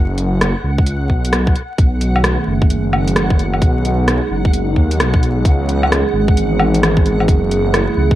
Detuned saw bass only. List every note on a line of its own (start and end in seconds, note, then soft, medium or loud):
0.00 0.54 F#1 loud
0.63 1.08 C#2 medium
1.10 1.55 B1 medium
1.78 2.37 B1 medium
2.47 3.38 F#1 medium
3.39 3.60 F#1 loud
3.62 4.20 B1 medium
4.30 4.75 F#1 medium
4.76 5.01 D#2 medium
4.99 5.44 B1 medium
5.45 6.03 C#2 medium
6.13 7.04 G#1 medium
7.05 7.27 G#1 loud
7.28 7.87 F#1 medium
7.97 8.15 C#2 medium